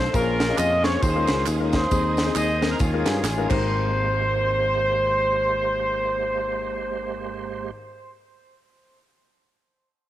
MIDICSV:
0, 0, Header, 1, 6, 480
1, 0, Start_track
1, 0, Key_signature, -4, "major"
1, 0, Tempo, 443131
1, 152, Time_signature, 4, 2, 24, 8
1, 10929, End_track
2, 0, Start_track
2, 0, Title_t, "Tonewheel organ"
2, 0, Program_c, 0, 16
2, 0, Note_on_c, 0, 69, 70
2, 0, Note_on_c, 0, 75, 61
2, 0, Note_on_c, 0, 77, 62
2, 0, Note_on_c, 0, 84, 77
2, 132, Note_off_c, 0, 69, 0
2, 134, Note_off_c, 0, 84, 0
2, 136, Note_off_c, 0, 77, 0
2, 137, Note_off_c, 0, 75, 0
2, 158, Note_on_c, 0, 61, 64
2, 163, Note_on_c, 0, 70, 71
2, 163, Note_on_c, 0, 80, 65
2, 168, Note_on_c, 0, 84, 77
2, 1109, Note_off_c, 0, 70, 0
2, 1111, Note_off_c, 0, 84, 0
2, 1114, Note_on_c, 0, 87, 82
2, 1125, Note_on_c, 0, 77, 71
2, 2057, Note_off_c, 0, 61, 0
2, 2057, Note_off_c, 0, 87, 0
2, 2066, Note_on_c, 0, 72, 74
2, 2068, Note_on_c, 0, 75, 68
2, 2070, Note_off_c, 0, 77, 0
2, 2070, Note_on_c, 0, 87, 79
2, 3021, Note_off_c, 0, 72, 0
2, 3022, Note_off_c, 0, 75, 0
2, 3035, Note_on_c, 0, 73, 73
2, 3039, Note_on_c, 0, 77, 63
2, 3767, Note_off_c, 0, 80, 0
2, 3779, Note_off_c, 0, 87, 0
2, 3791, Note_off_c, 0, 73, 0
2, 3793, Note_off_c, 0, 77, 0
2, 3801, Note_on_c, 0, 58, 64
2, 3802, Note_on_c, 0, 72, 73
2, 3803, Note_on_c, 0, 56, 59
2, 3806, Note_on_c, 0, 67, 65
2, 8347, Note_off_c, 0, 58, 0
2, 8348, Note_off_c, 0, 72, 0
2, 8349, Note_off_c, 0, 56, 0
2, 8352, Note_off_c, 0, 67, 0
2, 10929, End_track
3, 0, Start_track
3, 0, Title_t, "Horn section"
3, 0, Program_c, 1, 61
3, 0, Note_on_c, 1, 72, 102
3, 141, Note_off_c, 1, 72, 0
3, 150, Note_on_c, 1, 70, 115
3, 176, Note_on_c, 1, 61, 82
3, 176, Note_on_c, 1, 65, 80
3, 598, Note_off_c, 1, 70, 0
3, 621, Note_on_c, 1, 75, 123
3, 905, Note_on_c, 1, 73, 110
3, 910, Note_off_c, 1, 75, 0
3, 1081, Note_off_c, 1, 65, 0
3, 1082, Note_off_c, 1, 61, 0
3, 1107, Note_off_c, 1, 73, 0
3, 1112, Note_on_c, 1, 72, 100
3, 1130, Note_on_c, 1, 65, 73
3, 1132, Note_on_c, 1, 68, 74
3, 1550, Note_off_c, 1, 72, 0
3, 1698, Note_off_c, 1, 68, 0
3, 1882, Note_on_c, 1, 68, 82
3, 1884, Note_on_c, 1, 63, 84
3, 1905, Note_on_c, 1, 72, 114
3, 2039, Note_off_c, 1, 65, 0
3, 2525, Note_off_c, 1, 72, 0
3, 2541, Note_off_c, 1, 68, 0
3, 2554, Note_on_c, 1, 68, 86
3, 2559, Note_on_c, 1, 75, 119
3, 2561, Note_on_c, 1, 72, 81
3, 2797, Note_off_c, 1, 63, 0
3, 2912, Note_off_c, 1, 75, 0
3, 2929, Note_on_c, 1, 70, 91
3, 3000, Note_off_c, 1, 68, 0
3, 3004, Note_off_c, 1, 72, 0
3, 3023, Note_on_c, 1, 68, 90
3, 3031, Note_off_c, 1, 70, 0
3, 3031, Note_on_c, 1, 61, 67
3, 3037, Note_on_c, 1, 65, 68
3, 3752, Note_off_c, 1, 61, 0
3, 3756, Note_off_c, 1, 65, 0
3, 3775, Note_on_c, 1, 72, 107
3, 3792, Note_off_c, 1, 68, 0
3, 8321, Note_off_c, 1, 72, 0
3, 10929, End_track
4, 0, Start_track
4, 0, Title_t, "Grand piano"
4, 0, Program_c, 2, 0
4, 143, Note_on_c, 2, 58, 78
4, 143, Note_on_c, 2, 65, 69
4, 144, Note_on_c, 2, 46, 64
4, 144, Note_on_c, 2, 72, 79
4, 145, Note_on_c, 2, 68, 73
4, 147, Note_on_c, 2, 61, 72
4, 405, Note_off_c, 2, 58, 0
4, 405, Note_off_c, 2, 65, 0
4, 406, Note_off_c, 2, 68, 0
4, 406, Note_off_c, 2, 72, 0
4, 407, Note_off_c, 2, 61, 0
4, 523, Note_on_c, 2, 61, 75
4, 525, Note_on_c, 2, 58, 79
4, 525, Note_on_c, 2, 65, 76
4, 530, Note_on_c, 2, 68, 76
4, 530, Note_on_c, 2, 75, 84
4, 743, Note_off_c, 2, 61, 0
4, 744, Note_off_c, 2, 58, 0
4, 744, Note_off_c, 2, 65, 0
4, 747, Note_off_c, 2, 68, 0
4, 747, Note_off_c, 2, 75, 0
4, 869, Note_off_c, 2, 46, 0
4, 907, Note_on_c, 2, 61, 74
4, 909, Note_on_c, 2, 58, 70
4, 909, Note_on_c, 2, 65, 70
4, 913, Note_on_c, 2, 68, 69
4, 917, Note_on_c, 2, 72, 80
4, 1091, Note_off_c, 2, 61, 0
4, 1092, Note_off_c, 2, 58, 0
4, 1092, Note_off_c, 2, 65, 0
4, 1094, Note_off_c, 2, 68, 0
4, 1095, Note_off_c, 2, 72, 0
4, 1115, Note_on_c, 2, 51, 69
4, 1246, Note_on_c, 2, 56, 83
4, 1250, Note_on_c, 2, 61, 79
4, 1250, Note_on_c, 2, 63, 75
4, 1254, Note_on_c, 2, 65, 74
4, 1256, Note_on_c, 2, 70, 84
4, 1532, Note_off_c, 2, 56, 0
4, 1535, Note_off_c, 2, 61, 0
4, 1535, Note_off_c, 2, 63, 0
4, 1536, Note_off_c, 2, 65, 0
4, 1537, Note_off_c, 2, 70, 0
4, 1732, Note_on_c, 2, 56, 80
4, 1734, Note_on_c, 2, 61, 72
4, 1734, Note_on_c, 2, 63, 68
4, 1738, Note_on_c, 2, 70, 87
4, 1739, Note_on_c, 2, 65, 72
4, 1834, Note_off_c, 2, 51, 0
4, 1956, Note_off_c, 2, 56, 0
4, 1957, Note_off_c, 2, 61, 0
4, 1957, Note_off_c, 2, 63, 0
4, 1959, Note_off_c, 2, 65, 0
4, 1959, Note_off_c, 2, 70, 0
4, 2065, Note_on_c, 2, 60, 72
4, 2066, Note_on_c, 2, 63, 63
4, 2070, Note_on_c, 2, 51, 65
4, 2072, Note_on_c, 2, 68, 86
4, 2327, Note_off_c, 2, 60, 0
4, 2328, Note_off_c, 2, 63, 0
4, 2331, Note_off_c, 2, 68, 0
4, 2447, Note_on_c, 2, 60, 82
4, 2449, Note_on_c, 2, 63, 72
4, 2454, Note_on_c, 2, 68, 91
4, 2666, Note_off_c, 2, 60, 0
4, 2667, Note_off_c, 2, 63, 0
4, 2670, Note_off_c, 2, 68, 0
4, 2792, Note_off_c, 2, 51, 0
4, 2824, Note_on_c, 2, 60, 76
4, 2826, Note_on_c, 2, 63, 67
4, 2835, Note_on_c, 2, 70, 80
4, 3010, Note_off_c, 2, 60, 0
4, 3011, Note_off_c, 2, 63, 0
4, 3015, Note_off_c, 2, 70, 0
4, 3031, Note_on_c, 2, 51, 69
4, 3175, Note_on_c, 2, 63, 76
4, 3176, Note_on_c, 2, 56, 75
4, 3176, Note_on_c, 2, 65, 72
4, 3177, Note_on_c, 2, 61, 66
4, 3182, Note_on_c, 2, 70, 87
4, 3458, Note_off_c, 2, 56, 0
4, 3458, Note_off_c, 2, 61, 0
4, 3458, Note_off_c, 2, 63, 0
4, 3458, Note_off_c, 2, 65, 0
4, 3461, Note_off_c, 2, 70, 0
4, 3650, Note_on_c, 2, 56, 90
4, 3654, Note_on_c, 2, 61, 87
4, 3656, Note_on_c, 2, 63, 79
4, 3657, Note_on_c, 2, 65, 79
4, 3661, Note_on_c, 2, 70, 103
4, 3753, Note_off_c, 2, 51, 0
4, 3755, Note_off_c, 2, 56, 0
4, 3772, Note_on_c, 2, 56, 83
4, 3786, Note_on_c, 2, 60, 77
4, 3791, Note_on_c, 2, 32, 80
4, 3797, Note_off_c, 2, 61, 0
4, 3797, Note_off_c, 2, 63, 0
4, 3798, Note_off_c, 2, 65, 0
4, 3800, Note_off_c, 2, 70, 0
4, 3800, Note_on_c, 2, 67, 78
4, 3816, Note_on_c, 2, 70, 90
4, 8318, Note_off_c, 2, 56, 0
4, 8332, Note_off_c, 2, 60, 0
4, 8337, Note_off_c, 2, 32, 0
4, 8346, Note_off_c, 2, 67, 0
4, 8362, Note_off_c, 2, 70, 0
4, 10929, End_track
5, 0, Start_track
5, 0, Title_t, "Fingered electric bass"
5, 0, Program_c, 3, 33
5, 153, Note_on_c, 3, 34, 103
5, 561, Note_off_c, 3, 34, 0
5, 630, Note_on_c, 3, 41, 99
5, 1039, Note_off_c, 3, 41, 0
5, 1113, Note_on_c, 3, 39, 114
5, 1354, Note_off_c, 3, 39, 0
5, 1397, Note_on_c, 3, 37, 95
5, 1564, Note_off_c, 3, 37, 0
5, 1600, Note_on_c, 3, 39, 102
5, 2006, Note_off_c, 3, 39, 0
5, 2074, Note_on_c, 3, 39, 104
5, 2482, Note_off_c, 3, 39, 0
5, 2552, Note_on_c, 3, 39, 99
5, 2961, Note_off_c, 3, 39, 0
5, 3036, Note_on_c, 3, 39, 107
5, 3276, Note_off_c, 3, 39, 0
5, 3311, Note_on_c, 3, 43, 93
5, 3481, Note_off_c, 3, 43, 0
5, 3502, Note_on_c, 3, 33, 101
5, 3748, Note_off_c, 3, 33, 0
5, 3796, Note_on_c, 3, 32, 108
5, 8342, Note_off_c, 3, 32, 0
5, 10929, End_track
6, 0, Start_track
6, 0, Title_t, "Drums"
6, 152, Note_on_c, 9, 51, 79
6, 154, Note_on_c, 9, 36, 107
6, 162, Note_on_c, 9, 54, 96
6, 260, Note_off_c, 9, 51, 0
6, 262, Note_off_c, 9, 36, 0
6, 270, Note_off_c, 9, 54, 0
6, 433, Note_on_c, 9, 54, 67
6, 437, Note_on_c, 9, 38, 117
6, 443, Note_on_c, 9, 51, 73
6, 541, Note_off_c, 9, 54, 0
6, 545, Note_off_c, 9, 38, 0
6, 551, Note_off_c, 9, 51, 0
6, 629, Note_on_c, 9, 39, 101
6, 629, Note_on_c, 9, 54, 98
6, 632, Note_on_c, 9, 51, 63
6, 738, Note_off_c, 9, 39, 0
6, 738, Note_off_c, 9, 54, 0
6, 740, Note_off_c, 9, 51, 0
6, 913, Note_on_c, 9, 38, 102
6, 916, Note_on_c, 9, 51, 63
6, 918, Note_on_c, 9, 54, 55
6, 1021, Note_off_c, 9, 38, 0
6, 1024, Note_off_c, 9, 51, 0
6, 1026, Note_off_c, 9, 54, 0
6, 1110, Note_on_c, 9, 54, 84
6, 1113, Note_on_c, 9, 36, 118
6, 1117, Note_on_c, 9, 51, 76
6, 1218, Note_off_c, 9, 54, 0
6, 1222, Note_off_c, 9, 36, 0
6, 1226, Note_off_c, 9, 51, 0
6, 1387, Note_on_c, 9, 39, 83
6, 1387, Note_on_c, 9, 54, 55
6, 1392, Note_on_c, 9, 51, 60
6, 1394, Note_on_c, 9, 38, 121
6, 1495, Note_off_c, 9, 39, 0
6, 1495, Note_off_c, 9, 54, 0
6, 1500, Note_off_c, 9, 51, 0
6, 1502, Note_off_c, 9, 38, 0
6, 1584, Note_on_c, 9, 39, 103
6, 1584, Note_on_c, 9, 54, 95
6, 1596, Note_on_c, 9, 51, 74
6, 1692, Note_off_c, 9, 39, 0
6, 1692, Note_off_c, 9, 54, 0
6, 1705, Note_off_c, 9, 51, 0
6, 1870, Note_on_c, 9, 54, 55
6, 1872, Note_on_c, 9, 51, 55
6, 1878, Note_on_c, 9, 38, 109
6, 1879, Note_on_c, 9, 36, 81
6, 1978, Note_off_c, 9, 54, 0
6, 1981, Note_off_c, 9, 51, 0
6, 1987, Note_off_c, 9, 38, 0
6, 1988, Note_off_c, 9, 36, 0
6, 2070, Note_on_c, 9, 54, 99
6, 2076, Note_on_c, 9, 36, 104
6, 2078, Note_on_c, 9, 51, 73
6, 2179, Note_off_c, 9, 54, 0
6, 2185, Note_off_c, 9, 36, 0
6, 2186, Note_off_c, 9, 51, 0
6, 2350, Note_on_c, 9, 54, 63
6, 2363, Note_on_c, 9, 38, 113
6, 2369, Note_on_c, 9, 51, 73
6, 2458, Note_off_c, 9, 54, 0
6, 2471, Note_off_c, 9, 38, 0
6, 2477, Note_off_c, 9, 51, 0
6, 2550, Note_on_c, 9, 39, 98
6, 2550, Note_on_c, 9, 54, 99
6, 2563, Note_on_c, 9, 51, 62
6, 2658, Note_off_c, 9, 39, 0
6, 2658, Note_off_c, 9, 54, 0
6, 2671, Note_off_c, 9, 51, 0
6, 2839, Note_on_c, 9, 54, 59
6, 2844, Note_on_c, 9, 38, 105
6, 2847, Note_on_c, 9, 51, 63
6, 2948, Note_off_c, 9, 54, 0
6, 2952, Note_off_c, 9, 38, 0
6, 2955, Note_off_c, 9, 51, 0
6, 3025, Note_on_c, 9, 54, 88
6, 3034, Note_on_c, 9, 36, 123
6, 3042, Note_on_c, 9, 51, 70
6, 3134, Note_off_c, 9, 54, 0
6, 3143, Note_off_c, 9, 36, 0
6, 3150, Note_off_c, 9, 51, 0
6, 3313, Note_on_c, 9, 51, 61
6, 3315, Note_on_c, 9, 38, 123
6, 3317, Note_on_c, 9, 39, 86
6, 3317, Note_on_c, 9, 54, 60
6, 3421, Note_off_c, 9, 51, 0
6, 3423, Note_off_c, 9, 38, 0
6, 3425, Note_off_c, 9, 39, 0
6, 3425, Note_off_c, 9, 54, 0
6, 3512, Note_on_c, 9, 39, 109
6, 3512, Note_on_c, 9, 54, 105
6, 3513, Note_on_c, 9, 38, 65
6, 3620, Note_off_c, 9, 39, 0
6, 3620, Note_off_c, 9, 54, 0
6, 3621, Note_off_c, 9, 38, 0
6, 3795, Note_on_c, 9, 39, 85
6, 3797, Note_on_c, 9, 36, 106
6, 3800, Note_on_c, 9, 49, 85
6, 3903, Note_off_c, 9, 39, 0
6, 3906, Note_off_c, 9, 36, 0
6, 3908, Note_off_c, 9, 49, 0
6, 10929, End_track
0, 0, End_of_file